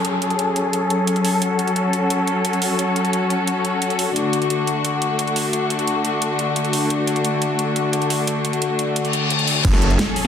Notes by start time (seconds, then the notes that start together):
Already playing: F#3 C#4 G#4 A4, downlifter
0.05 closed hi-hat
0.22 closed hi-hat
0.30 closed hi-hat
0.39 closed hi-hat
0.56 closed hi-hat
0.73 closed hi-hat
0.90 closed hi-hat
1.07 closed hi-hat
1.16 closed hi-hat
1.25 open hi-hat
1.42 F#4, closed hi-hat
1.59 closed hi-hat
1.68 closed hi-hat
1.76 closed hi-hat
1.93 closed hi-hat
2.10 closed hi-hat
2.27 closed hi-hat
2.45 closed hi-hat
2.53 closed hi-hat
2.62 open hi-hat
2.79 closed hi-hat
2.96 closed hi-hat
3.05 closed hi-hat
3.13 closed hi-hat
3.30 closed hi-hat
3.47 closed hi-hat
3.65 closed hi-hat
3.82 closed hi-hat
3.90 closed hi-hat
3.99 open hi-hat
4.16 D3 A3 D4, closed hi-hat
4.33 closed hi-hat
4.42 closed hi-hat
4.50 closed hi-hat
4.67 closed hi-hat
4.85 closed hi-hat
5.02 closed hi-hat
5.19 closed hi-hat
5.27 closed hi-hat
5.36 open hi-hat
5.53 closed hi-hat
5.70 closed hi-hat
5.79 closed hi-hat
5.88 closed hi-hat
6.05 closed hi-hat
6.22 closed hi-hat
6.39 closed hi-hat
6.56 closed hi-hat
6.65 closed hi-hat
6.73 open hi-hat
6.90 closed hi-hat
7.07 closed hi-hat
7.16 closed hi-hat
7.25 closed hi-hat
7.42 closed hi-hat
7.59 closed hi-hat
7.76 closed hi-hat
7.93 closed hi-hat
8.02 closed hi-hat
8.10 open hi-hat
8.27 closed hi-hat
8.45 closed hi-hat
8.53 closed hi-hat
8.62 closed hi-hat
8.79 closed hi-hat
8.96 closed hi-hat, reverse cymbal
9.05 closed hi-hat
9.13 closed hi-hat
9.30 closed hi-hat
9.39 closed hi-hat
9.48 open hi-hat
9.65 F#1 F#3 C#4 G#4 A4, kick, closed hi-hat, crash, impact
9.73 snare
9.82 closed hi-hat
9.90 closed hi-hat
9.99 snare, closed hi-hat
10.16 open hi-hat